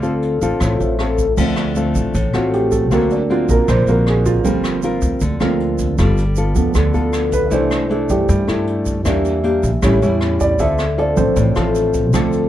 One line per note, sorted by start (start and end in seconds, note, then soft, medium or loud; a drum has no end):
0.00 0.38 D2 medium
0.00 0.59 D3 soft
0.00 0.38 C4 medium
0.00 0.75 F4 soft
0.00 0.38 F4 medium
0.00 0.38 A4 medium
0.00 0.77 C5 soft
0.00 0.95 F5 medium
0.00 closed hi-hat soft
0.00 shaker soft
0.22 closed hi-hat soft
0.41 0.50 A1 medium
0.41 0.96 C4 medium
0.41 0.96 F4 medium
0.41 0.97 A4 medium
0.41 closed hi-hat soft
0.41 shaker medium
0.60 0.79 A1 medium
0.60 1.35 A2 medium
0.60 kick medium
0.60 cross-stick medium
0.60 closed hi-hat soft
0.60 shaker medium
0.79 1.34 A1 medium
0.79 1.37 F4 soft
0.79 1.37 A4 soft
0.79 1.38 C5 soft
0.79 1.38 E5 soft
0.79 closed hi-hat soft
0.79 shaker soft
0.99 1.25 C4 medium
0.99 1.25 F4 medium
0.99 1.26 A4 medium
0.99 cross-stick medium
0.99 closed hi-hat soft
1.18 kick medium
1.18 closed hi-hat soft
1.18 shaker medium
1.37 1.91 D2 medium
1.37 2.13 D3 medium
1.37 2.87 F3 soft
1.37 1.73 A3 soft
1.37 2.87 C4 soft
1.37 1.73 C4 soft
1.37 1.73 F4 medium
1.37 kick medium
1.37 crash medium
1.37 shaker medium
1.56 cross-stick medium
1.56 closed hi-hat soft
1.56 shaker soft
1.76 2.14 A3 medium
1.76 2.14 C4 medium
1.76 2.15 F4 medium
1.76 closed hi-hat soft
1.76 shaker soft
1.95 2.04 A1 medium
1.95 kick soft
1.95 closed hi-hat soft
1.95 shaker medium
2.14 2.32 A1 medium
2.14 2.89 A2 medium
2.14 kick soft
2.14 closed hi-hat medium
2.14 shaker medium
2.33 2.91 A1 medium
2.33 2.88 A3 medium
2.33 2.88 C4 medium
2.33 2.89 F4 medium
2.33 2.52 F#4 medium
2.33 cross-stick soft
2.33 closed hi-hat soft
2.33 shaker soft
2.53 2.72 G4 medium
2.53 closed hi-hat soft
2.71 2.90 A4 medium
2.71 kick medium
2.71 closed hi-hat soft
2.71 shaker medium
2.91 3.45 D2 medium
2.91 3.66 D3 soft
2.91 3.46 F#3 soft
2.91 3.16 A#3 medium
2.91 3.46 A#3 soft
2.91 3.16 C4 medium
2.91 3.47 C4 soft
2.91 3.17 F#4 medium
2.91 3.11 A#4 medium
2.91 kick medium
2.91 cross-stick soft
2.91 closed hi-hat medium
2.91 shaker medium
3.10 3.30 D4 soft
3.10 closed hi-hat soft
3.10 shaker soft
3.30 3.68 A#3 medium
3.30 3.68 C4 medium
3.30 3.49 F4 medium
3.30 3.68 F#4 medium
3.30 closed hi-hat soft
3.49 3.58 A#1 medium
3.49 3.68 A#4 medium
3.49 kick soft
3.49 closed hi-hat soft
3.49 shaker medium
3.68 3.86 A#1 medium
3.68 4.43 D3 medium
3.68 3.87 C5 medium
3.68 kick medium
3.68 cross-stick medium
3.68 closed hi-hat medium
3.68 shaker medium
3.87 4.45 A#1 medium
3.87 4.42 A#3 medium
3.87 4.42 C4 medium
3.87 4.43 F#4 medium
3.87 4.07 A#4 medium
3.87 closed hi-hat soft
3.87 shaker soft
4.06 4.26 G#4 medium
4.06 cross-stick medium
4.06 closed hi-hat soft
4.25 5.18 F4 medium
4.25 kick medium
4.25 closed hi-hat soft
4.25 shaker medium
4.44 4.98 G1 medium
4.44 5.39 F3 soft
4.44 5.20 G3 soft
4.44 5.40 A#3 soft
4.44 4.80 C4 medium
4.44 5.40 C4 soft
4.44 4.80 F4 soft
4.44 5.94 A4 soft
4.44 4.80 A#4 medium
4.44 kick medium
4.44 closed hi-hat soft
4.44 shaker medium
4.64 cross-stick medium
4.64 closed hi-hat soft
4.64 shaker soft
4.83 5.22 C4 medium
4.83 5.22 F4 medium
4.83 5.22 A#4 medium
4.83 closed hi-hat soft
4.83 shaker soft
5.02 5.11 D2 medium
5.02 kick soft
5.02 closed hi-hat soft
5.02 shaker medium
5.21 5.40 D2 medium
5.21 5.97 D3 medium
5.21 kick medium
5.21 closed hi-hat medium
5.21 shaker medium
5.41 6.00 D2 medium
5.41 5.58 F3 soft
5.41 5.58 A3 soft
5.41 5.58 A#3 soft
5.41 5.95 C4 medium
5.41 5.58 C4 soft
5.41 5.95 F4 medium
5.41 5.96 A#4 medium
5.41 cross-stick medium
5.41 closed hi-hat soft
5.41 shaker soft
5.60 closed hi-hat soft
5.79 kick medium
5.79 closed hi-hat soft
5.79 shaker medium
5.98 6.52 G1 loud
5.98 6.73 G3 medium
5.98 6.23 B3 soft
5.98 6.24 F4 medium
5.98 6.24 A4 medium
5.98 kick medium
5.98 cross-stick soft
5.98 closed hi-hat medium
5.98 shaker medium
6.17 closed hi-hat soft
6.17 shaker soft
6.36 6.75 B3 medium
6.36 6.76 F4 medium
6.36 6.76 A4 medium
6.36 closed hi-hat soft
6.36 shaker soft
6.55 6.65 D2 medium
6.55 7.48 F3 soft
6.55 7.48 A3 soft
6.55 7.48 B3 soft
6.55 kick soft
6.55 closed hi-hat soft
6.55 shaker medium
6.74 6.93 D2 medium
6.74 7.50 D3 medium
6.74 7.29 A4 medium
6.74 kick medium
6.74 cross-stick medium
6.74 closed hi-hat medium
6.74 shaker medium
6.93 7.52 D2 medium
6.93 7.48 B3 medium
6.93 7.49 F4 medium
6.93 7.49 A4 medium
6.93 closed hi-hat soft
6.93 shaker soft
7.13 cross-stick medium
7.13 closed hi-hat soft
7.13 shaker soft
7.32 7.52 B4 medium
7.32 kick medium
7.32 closed hi-hat soft
7.32 shaker medium
7.50 8.05 C2 loud
7.50 8.26 C3 soft
7.50 8.08 E3 soft
7.50 7.87 A3 medium
7.50 8.09 A3 soft
7.50 7.87 D4 soft
7.50 8.09 D4 soft
7.50 7.87 E4 medium
7.50 7.88 C5 medium
7.50 kick medium
7.50 closed hi-hat soft
7.50 shaker medium
7.71 cross-stick medium
7.71 closed hi-hat soft
7.71 shaker soft
7.89 8.44 A3 soft
7.89 8.45 D4 medium
7.89 8.45 E4 medium
7.89 8.10 A4 soft
7.89 closed hi-hat soft
8.09 8.18 G2 medium
8.09 8.27 E3 soft
8.09 8.27 A3 soft
8.09 8.27 D4 soft
8.09 8.29 G4 medium
8.09 kick soft
8.09 closed hi-hat soft
8.09 shaker medium
8.28 8.47 G2 medium
8.28 9.03 G3 medium
8.28 kick medium
8.28 closed hi-hat medium
8.28 shaker medium
8.47 9.06 G2 medium
8.47 9.02 A3 medium
8.47 9.02 D4 medium
8.47 9.03 E4 medium
8.47 cross-stick soft
8.47 closed hi-hat soft
8.47 shaker soft
8.67 closed hi-hat soft
8.86 kick soft
8.86 closed hi-hat soft
8.86 shaker medium
9.05 9.59 E2 medium
9.05 9.80 E3 medium
9.05 9.79 G3 soft
9.05 9.41 A#3 soft
9.05 9.79 A#3 soft
9.05 9.41 D4 medium
9.05 9.79 D4 soft
9.05 9.41 G4 medium
9.05 kick soft
9.05 cross-stick medium
9.05 closed hi-hat soft
9.05 shaker medium
9.24 closed hi-hat soft
9.24 shaker soft
9.43 9.70 A#3 medium
9.43 9.70 D4 medium
9.43 9.70 G4 medium
9.43 closed hi-hat soft
9.63 9.72 A#1 medium
9.63 kick medium
9.63 closed hi-hat soft
9.63 shaker medium
9.82 10.00 A1 loud
9.82 10.57 A2 medium
9.82 9.98 G3 medium
9.82 10.56 G3 soft
9.82 9.99 C#4 medium
9.82 10.56 C#4 soft
9.82 9.99 E4 medium
9.82 10.56 E4 soft
9.82 10.37 C#5 soft
9.82 kick medium
9.82 cross-stick medium
9.82 closed hi-hat medium
9.82 shaker medium
10.02 10.59 E2 medium
10.02 10.56 G3 medium
10.02 10.56 C#4 medium
10.02 10.57 E4 medium
10.02 closed hi-hat soft
10.02 shaker soft
10.21 cross-stick medium
10.21 closed hi-hat soft
10.40 10.59 D5 medium
10.40 kick medium
10.40 closed hi-hat soft
10.40 shaker medium
10.59 11.13 D2 loud
10.59 11.34 D3 medium
10.59 10.84 C4 medium
10.59 10.84 F4 medium
10.59 10.84 A4 medium
10.59 10.95 E5 medium
10.59 kick medium
10.59 closed hi-hat medium
10.59 shaker medium
10.78 cross-stick medium
10.78 closed hi-hat soft
10.78 shaker soft
10.98 11.36 C4 medium
10.98 11.36 F4 medium
10.98 11.36 A4 medium
10.98 11.17 D5 medium
10.98 closed hi-hat soft
11.16 11.26 A1 medium
11.16 12.11 F3 soft
11.16 12.12 C4 soft
11.16 11.36 C5 medium
11.16 kick medium
11.16 closed hi-hat soft
11.16 shaker medium
11.36 11.54 A1 medium
11.36 12.11 A2 medium
11.36 kick medium
11.36 closed hi-hat medium
11.36 shaker medium
11.55 12.13 A1 medium
11.55 12.10 C4 medium
11.55 12.10 F4 medium
11.55 12.10 A4 medium
11.55 cross-stick medium
11.55 closed hi-hat soft
11.55 shaker soft
11.75 closed hi-hat soft
11.75 shaker soft
11.94 kick medium
11.94 closed hi-hat soft
11.94 shaker medium
12.13 12.49 D2 medium
12.13 12.49 D3 medium
12.13 12.38 F3 soft
12.13 12.48 C4 medium
12.13 12.39 C4 soft
12.13 12.49 F4 medium
12.13 12.49 A4 medium
12.13 kick medium
12.13 cross-stick medium
12.13 closed hi-hat medium
12.13 shaker medium
12.32 closed hi-hat soft
12.32 shaker soft